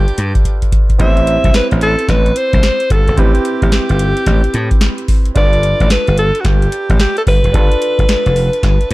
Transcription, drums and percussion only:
0.08 closed hi-hat
0.18 closed hi-hat
0.35 kick, closed hi-hat
0.45 kick, closed hi-hat
0.62 kick, closed hi-hat
0.72 kick, closed hi-hat
0.90 kick, closed hi-hat
1.00 kick, closed hi-hat
1.17 closed hi-hat
1.27 closed hi-hat
1.44 kick, closed hi-hat
1.54 snare, closed hi-hat
1.71 closed hi-hat
1.81 closed hi-hat
1.99 closed hi-hat
2.08 kick, snare, closed hi-hat
2.26 closed hi-hat
2.36 closed hi-hat
2.53 kick, closed hi-hat
2.63 snare, closed hi-hat
2.80 closed hi-hat
2.90 kick, closed hi-hat
3.08 closed hi-hat
3.18 kick, closed hi-hat
3.35 closed hi-hat
3.45 closed hi-hat
3.62 kick, closed hi-hat
3.72 snare, closed hi-hat
3.89 closed hi-hat
3.99 closed hi-hat
4.17 closed hi-hat
4.26 kick, snare, closed hi-hat
4.44 closed hi-hat
4.54 closed hi-hat
4.71 kick, closed hi-hat
4.81 snare, closed hi-hat
4.98 closed hi-hat
5.08 kick, open hi-hat
5.25 closed hi-hat
5.36 kick, closed hi-hat
5.53 closed hi-hat
5.63 closed hi-hat
5.80 kick, closed hi-hat
5.90 snare, closed hi-hat
6.07 closed hi-hat
6.18 closed hi-hat
6.35 closed hi-hat
6.45 kick, snare, closed hi-hat
6.62 closed hi-hat
6.72 closed hi-hat
6.90 kick, closed hi-hat
7.00 snare, closed hi-hat
7.17 closed hi-hat
7.27 kick, open hi-hat
7.44 closed hi-hat
7.54 kick, closed hi-hat
7.72 closed hi-hat
7.82 closed hi-hat
7.99 kick, closed hi-hat
8.09 snare, closed hi-hat
8.26 closed hi-hat
8.36 open hi-hat
8.53 closed hi-hat
8.63 kick, snare, closed hi-hat
8.81 closed hi-hat
8.91 closed hi-hat

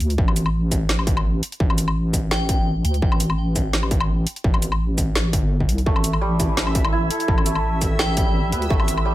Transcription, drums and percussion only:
0.00 closed hi-hat
0.10 closed hi-hat
0.18 kick
0.28 low woodblock
0.36 closed hi-hat, shaker
0.46 low woodblock
0.71 kick, closed hi-hat, shaker
0.89 snare
0.99 low woodblock
1.07 kick, closed hi-hat
1.17 low woodblock
1.43 closed hi-hat
1.52 closed hi-hat
1.60 kick
1.70 low woodblock
1.78 closed hi-hat, shaker
1.88 low woodblock
2.13 kick, closed hi-hat, shaker
2.31 snare
2.49 kick, closed hi-hat
2.85 closed hi-hat
2.94 closed hi-hat
3.02 kick
3.12 low woodblock
3.20 closed hi-hat, shaker
3.30 low woodblock
3.56 kick, closed hi-hat, shaker
3.73 snare
3.83 low woodblock
3.91 kick, closed hi-hat
4.00 low woodblock
4.27 closed hi-hat
4.36 closed hi-hat
4.44 kick
4.54 low woodblock
4.62 closed hi-hat, shaker
4.72 low woodblock
4.98 kick, closed hi-hat, shaker
5.15 snare
5.33 kick, closed hi-hat
5.60 kick
5.69 closed hi-hat
5.78 closed hi-hat
5.86 kick
5.96 low woodblock
6.04 closed hi-hat, shaker
6.13 low woodblock
6.40 kick, closed hi-hat, shaker
6.57 snare
6.67 low woodblock
6.75 kick, closed hi-hat
6.85 low woodblock
7.11 closed hi-hat
7.20 closed hi-hat
7.28 kick
7.38 low woodblock
7.46 closed hi-hat, shaker
7.55 low woodblock
7.82 kick, closed hi-hat, shaker
7.99 snare
8.17 kick, closed hi-hat
8.52 closed hi-hat
8.62 closed hi-hat
8.70 kick
8.80 low woodblock
8.88 closed hi-hat, shaker
8.98 low woodblock

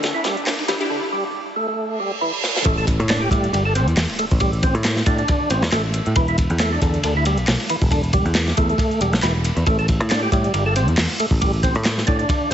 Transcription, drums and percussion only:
0.03 snare, closed hi-hat, ride
0.24 snare, closed hi-hat, ride
0.37 closed hi-hat
0.47 snare, clap, closed hi-hat, open hi-hat
0.59 ride
0.68 snare, closed hi-hat, ride
0.81 closed hi-hat
2.44 snare
2.56 snare
2.66 kick, closed hi-hat, ride
2.78 closed hi-hat
2.87 kick, closed hi-hat, ride
3.00 closed hi-hat
3.09 snare, clap, closed hi-hat, ride
3.31 kick, closed hi-hat, ride
3.44 closed hi-hat
3.54 closed hi-hat, ride
3.75 closed hi-hat, ride
3.88 closed hi-hat
3.97 snare, clap, closed hi-hat, open hi-hat
4.09 ride
4.19 closed hi-hat, ride
4.31 kick, closed hi-hat
4.40 kick, closed hi-hat, ride
4.53 closed hi-hat
4.63 kick, closed hi-hat, ride
4.75 closed hi-hat
4.84 snare, clap, closed hi-hat, ride
4.96 snare
5.06 kick, closed hi-hat, ride
5.18 closed hi-hat
5.28 kick, closed hi-hat, ride
5.50 closed hi-hat, ride
5.62 snare, closed hi-hat
5.72 snare, clap, closed hi-hat, ride
5.94 closed hi-hat, ride
6.06 closed hi-hat
6.16 kick, closed hi-hat, ride
6.28 closed hi-hat
6.38 kick, closed hi-hat, ride
6.50 closed hi-hat
6.60 snare, clap, closed hi-hat, ride
6.82 kick, closed hi-hat, ride
6.94 closed hi-hat
7.03 closed hi-hat, ride
7.25 closed hi-hat, ride
7.38 closed hi-hat
7.48 snare, clap, closed hi-hat, open hi-hat
7.60 ride
7.69 closed hi-hat, ride
7.82 kick, closed hi-hat
7.91 kick, closed hi-hat, ride
8.04 closed hi-hat
8.13 kick, closed hi-hat, ride
8.26 closed hi-hat
8.35 snare, clap, closed hi-hat, ride
8.47 snare, closed hi-hat
8.57 kick, closed hi-hat, ride
8.69 closed hi-hat
8.78 kick, closed hi-hat, ride
8.91 closed hi-hat
9.01 closed hi-hat, ride
9.13 snare, closed hi-hat
9.23 snare, clap, closed hi-hat, ride
9.44 closed hi-hat, ride
9.57 closed hi-hat
9.66 kick, closed hi-hat, ride
9.79 closed hi-hat
9.88 kick, closed hi-hat, ride
10.01 closed hi-hat
10.10 snare, clap, closed hi-hat, ride
10.32 kick, closed hi-hat, ride
10.44 closed hi-hat
10.54 closed hi-hat, ride
10.76 closed hi-hat, ride
10.88 closed hi-hat
10.97 snare, clap, closed hi-hat, open hi-hat
11.09 ride
11.20 closed hi-hat, ride
11.31 kick, closed hi-hat
11.41 kick, closed hi-hat, ride
11.53 closed hi-hat
11.63 kick, closed hi-hat, ride
11.75 closed hi-hat
11.85 snare, clap, closed hi-hat, ride
11.98 snare
12.07 kick, closed hi-hat, ride
12.19 closed hi-hat
12.29 kick, closed hi-hat, ride

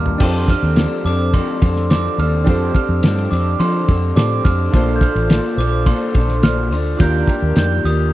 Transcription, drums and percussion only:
0.06 floor tom
0.20 kick, crash
0.48 kick, ride
0.76 snare, ride
1.07 ride
1.34 kick, ride
1.62 kick, ride
1.76 snare
1.90 snare, ride
2.19 ride
2.47 kick, ride
2.75 kick, ride
3.03 snare, ride
3.19 ride
3.33 ride
3.60 ride
3.89 kick, ride
4.17 snare, ride
4.45 kick, ride
4.74 kick, ride
5.01 kick, ride
5.16 ride
5.30 snare, ride
5.60 ride
5.86 kick, ride
6.15 kick, ride
6.29 snare
6.43 snare, ride
6.72 open hi-hat, ride
7.00 kick, hi-hat pedal, ride
7.27 kick, ride
7.56 snare, ride
7.86 ride

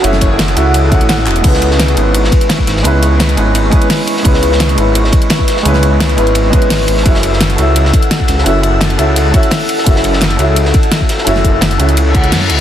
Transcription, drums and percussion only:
0.04 closed hi-hat, ride
0.13 snare
0.21 kick, closed hi-hat, ride
0.39 snare, closed hi-hat, ride
0.48 closed hi-hat
0.57 closed hi-hat, ride
0.74 closed hi-hat, ride
0.92 kick, closed hi-hat, ride
1.01 closed hi-hat
1.09 snare, closed hi-hat, ride
1.18 snare
1.27 clap, closed hi-hat, ride
1.36 closed hi-hat
1.44 kick, closed hi-hat, crash, ride
1.54 snare
1.62 closed hi-hat, ride
1.71 snare
1.79 snare, closed hi-hat, ride
1.88 closed hi-hat
1.97 closed hi-hat, ride
2.14 closed hi-hat, ride
2.24 snare
2.32 kick, closed hi-hat, ride
2.41 closed hi-hat
2.49 snare, closed hi-hat, ride
2.59 kick
2.67 snare, closed hi-hat, ride
2.77 snare
2.84 closed hi-hat, ride
3.03 closed hi-hat, ride
3.20 snare, closed hi-hat, ride
3.29 closed hi-hat
3.37 closed hi-hat, ride
3.55 closed hi-hat, ride
3.71 kick, closed hi-hat, ride
3.82 closed hi-hat
3.90 snare, closed hi-hat, open hi-hat
3.99 ride
4.07 closed hi-hat, ride
4.17 snare
4.25 kick, closed hi-hat, ride
4.34 snare
4.42 closed hi-hat, ride
4.52 snare
4.60 snare, closed hi-hat, ride
4.69 closed hi-hat
4.78 closed hi-hat, ride
4.95 closed hi-hat, ride
5.04 snare
5.12 kick, closed hi-hat, ride
5.22 closed hi-hat
5.30 snare, closed hi-hat, ride
5.39 kick
5.48 snare, closed hi-hat, ride
5.57 snare
5.65 closed hi-hat, ride
5.74 snare
5.83 closed hi-hat, ride
6.00 snare, closed hi-hat, ride
6.09 closed hi-hat
6.18 closed hi-hat, ride
6.27 closed hi-hat
6.35 closed hi-hat, ride
6.53 kick, closed hi-hat, ride
6.62 closed hi-hat
6.70 snare, closed hi-hat, open hi-hat
6.79 snare, ride
6.88 closed hi-hat, ride
6.97 snare
7.06 kick, closed hi-hat, ride
7.15 snare
7.23 closed hi-hat, ride
7.33 snare
7.40 snare, closed hi-hat, ride
7.50 closed hi-hat
7.58 closed hi-hat, ride
7.76 closed hi-hat, ride
7.85 snare
7.93 kick, closed hi-hat, ride
8.02 closed hi-hat
8.11 snare, closed hi-hat, ride
8.20 kick
8.28 snare, closed hi-hat, ride
8.38 snare
8.46 closed hi-hat, ride
8.63 closed hi-hat, ride
8.81 snare, closed hi-hat, ride
8.90 closed hi-hat
8.99 closed hi-hat, ride
9.16 closed hi-hat, ride
9.34 kick, closed hi-hat, ride
9.43 closed hi-hat
9.51 snare, closed hi-hat, open hi-hat
9.60 ride
9.69 closed hi-hat, ride
9.78 snare
9.86 kick, closed hi-hat, ride
9.96 snare
10.04 closed hi-hat, ride
10.13 snare
10.21 snare, closed hi-hat, ride
10.31 closed hi-hat
10.39 closed hi-hat, ride
10.56 closed hi-hat, ride
10.65 snare
10.74 kick, closed hi-hat, ride
10.83 closed hi-hat
10.92 snare, closed hi-hat, ride
11.01 kick
11.09 snare, closed hi-hat, ride
11.18 snare
11.27 closed hi-hat, ride
11.36 snare
11.44 kick, closed hi-hat
11.61 snare, closed hi-hat, ride
11.71 closed hi-hat
11.80 closed hi-hat, ride
11.89 closed hi-hat
11.97 closed hi-hat, ride
12.15 kick, closed hi-hat, ride
12.24 closed hi-hat
12.32 snare, closed hi-hat, open hi-hat
12.41 snare, ride
12.50 closed hi-hat, ride

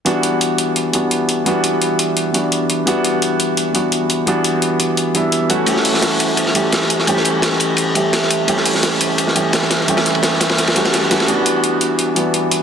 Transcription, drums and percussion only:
0.06 closed hi-hat
0.23 closed hi-hat
0.41 closed hi-hat
0.58 closed hi-hat
0.76 closed hi-hat
0.93 closed hi-hat
1.11 closed hi-hat
1.29 closed hi-hat
1.46 closed hi-hat
1.64 closed hi-hat
1.82 closed hi-hat
1.99 closed hi-hat
2.17 closed hi-hat
2.34 closed hi-hat
2.52 closed hi-hat
2.70 closed hi-hat
2.87 closed hi-hat
3.05 closed hi-hat
3.22 closed hi-hat
3.40 closed hi-hat
3.57 closed hi-hat
3.75 closed hi-hat
3.92 closed hi-hat
4.10 closed hi-hat
4.27 closed hi-hat
4.44 closed hi-hat
4.62 closed hi-hat
4.80 closed hi-hat
4.97 closed hi-hat
5.15 closed hi-hat
5.32 closed hi-hat
5.50 closed hi-hat
5.66 closed hi-hat, ride
5.77 snare
5.85 closed hi-hat, open hi-hat
5.94 snare
6.02 snare, closed hi-hat, ride
6.20 closed hi-hat, ride
6.37 closed hi-hat, ride
6.46 snare
6.55 closed hi-hat, ride
6.72 snare, closed hi-hat, ride
6.82 snare
6.90 closed hi-hat, ride
6.99 snare
7.07 closed hi-hat, ride
7.17 snare
7.25 closed hi-hat, ride
7.42 snare, closed hi-hat, ride
7.52 snare
7.60 closed hi-hat, ride
7.77 closed hi-hat, ride
7.95 closed hi-hat, ride
8.13 snare, closed hi-hat, ride
8.23 snare
8.30 closed hi-hat, ride
8.48 closed hi-hat, ride
8.57 snare
8.66 closed hi-hat, open hi-hat
8.74 snare
8.83 snare, closed hi-hat, ride
9.01 closed hi-hat, ride
9.18 closed hi-hat, ride
9.27 snare
9.36 closed hi-hat, ride
9.53 snare, closed hi-hat, ride
9.62 snare
9.70 snare, closed hi-hat, ride
9.80 snare
9.88 closed hi-hat, ride
9.97 snare, ride
10.05 snare, closed hi-hat
10.15 ride
10.23 snare, closed hi-hat, ride
10.33 snare
10.40 snare, closed hi-hat, ride
10.49 snare, ride
10.58 snare, closed hi-hat, ride
10.67 snare, ride
10.75 snare, closed hi-hat, ride
10.85 snare, ride
10.93 snare, closed hi-hat, ride
11.02 snare
11.11 snare, closed hi-hat, ride
11.20 snare, ride
11.28 closed hi-hat
11.46 closed hi-hat
11.64 closed hi-hat
11.81 closed hi-hat
11.99 closed hi-hat
12.16 closed hi-hat
12.34 closed hi-hat
12.51 closed hi-hat

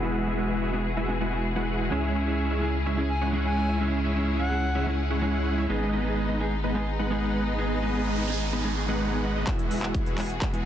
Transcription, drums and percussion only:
9.47 kick, clap, closed hi-hat
9.59 closed hi-hat
9.71 open hi-hat
9.83 clap
9.95 kick, closed hi-hat
10.06 closed hi-hat
10.18 clap, open hi-hat
10.30 closed hi-hat
10.42 kick, clap, closed hi-hat
10.54 closed hi-hat

